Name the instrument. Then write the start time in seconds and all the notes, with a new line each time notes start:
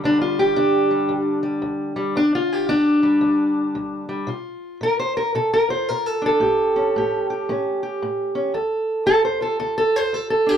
steel-string acoustic guitar
0.04 D2 D3 G3 D4
0.21 F4
0.39 G4
0.56 D2 D4
0.91 G3
1.09 D2
1.43 G3
1.62 D2
1.96 G3
2.16 D2 D4
2.35 F4
2.52 G4
2.69 D2 D4
3.03 G3
3.21 D2
3.75 D2
4.09 G3
4.27 A#2 F4
4.81 A#2 A#4
5.00 C5
5.17 A#4
5.35 A#2 A4
5.54 A#4
5.69 F4 C5
5.89 A#2 A#4
6.06 A4
6.22 D4
6.26 A4
6.40 A2 G4
6.76 C#4
6.96 A2 G4
7.30 G4
7.49 A2 C#4
7.83 G4
8.02 A2
8.35 C#4
8.54 D2 A4
9.06 D2 A4
9.25 C5
9.41 F4 A4
9.60 D2 A4
9.78 A4
9.96 C5
10.13 D2 A4
10.30 A4
10.46 D4 G4